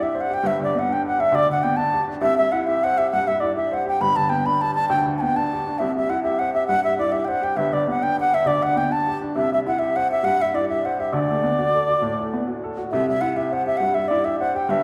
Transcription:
Already playing: C2 G2 C3
0.01 G4 E5
0.15 C5
0.21 F#5
0.30 G4 G5
0.43 G1 G2 E5
0.60 D3 D5
0.75 B3 F#5
0.89 D4
0.93 G5
1.05 G4 F#5
1.18 D4 E5
1.32 D2 D3 D5
1.50 D3 F#5
1.63 B3 G5
1.77 D4 A5
1.94 G4
2.08 D4
2.21 C2 C3 E5
2.38 G3 E5
2.52 E4 F#5
2.67 G4 E5
2.84 C5 F#5
2.98 G4 E5
3.11 G2 G3 F#5
3.27 G3 E5
3.40 E4 D5
3.56 G4 E5
3.71 C5 F#5
3.85 G4 G5
4.00 G1 G2 B5
4.16 D3 A5
4.29 B3 G5
4.45 D4 B5
4.61 G4 A5
4.75 D4 A5
4.89 D2 D3 G5
5.06 D3
5.18 G5 A5
5.22 B3
5.36 D4 A5
5.53 G4
5.67 D4
5.79 C2 C3 E5
5.96 G3 E5
6.09 E4 F#5
6.23 G4 E5
6.39 C5 F#5
6.54 G4 E5
6.68 G2 G3 F#5
6.84 G3 E5
6.99 E4 D5
7.12 G4 E5
7.25 C5 F#5 G5
7.41 G4 G5
7.56 G1 G2 E5
7.73 D3 D5
7.87 B3 F#5
8.02 D4 G5
8.18 G4 F#5
8.33 D4 E5
8.46 D2 D3 D5
8.62 D3 F#5
8.76 B3 G5
8.91 D4 A5
9.07 G4
9.22 D4
9.36 C2 C3 E5
9.52 G3 E5
9.67 E4 F#5
9.79 G4 E5
9.96 C5 F#5
10.10 G4 E5
10.23 G2 G3 F#5
10.40 G3 E5
10.54 E4 D5
10.69 G4 E5
10.85 C5 F#5
10.99 G4 E5
11.13 D2 D3 D5
11.31 A3
11.43 B3
11.58 F#4
11.74 A4
11.88 F#4
12.01 A2 A3
12.20 A3
12.34 B3
12.47 F#4
12.64 A4
12.77 F#4
12.92 C2 C3 E5
13.08 G3 E5
13.21 E4 F#5
13.36 G4 E5
13.52 C5 F#5
13.66 G4 E5
13.77 G2 G3 F#5
13.94 G3 E5
14.08 E4 D5
14.25 G4 E5
14.40 C5 F#5
14.55 G4 G5
14.69 G1 G2 E5

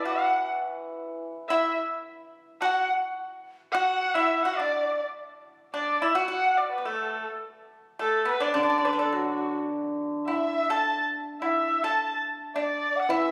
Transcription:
Already playing: E3
0.05 F#4 F#5
1.48 E4 E5 F#5
1.54 E5
2.61 F#4 F#5 A5
2.65 F#5
3.72 F#4 F#5
4.14 E4 E5
4.43 F#4 F#5
4.57 D4 D5
5.74 D4 D5
6.02 E4 E5
6.15 F#4 F#5
6.28 F#4 F#5
6.57 D5
6.71 B4
6.78 B3
6.85 A3 A4
7.99 A3 A4
8.25 B3 B4
8.40 D4 D5
8.54 D3 D4 D5
8.63 D4
8.70 D4
8.78 D4
8.85 D4 B4
8.93 D4
8.99 D4 A4
9.13 F#3 F#4
10.27 E4 E5 F#5
10.31 E5
10.70 A4 A5
11.42 E4 E5 F#5
11.46 E5
11.83 A4 A5
12.54 D4 D5 E5
12.59 D5
12.96 F#5
13.09 E3 E4 E5
13.14 E5

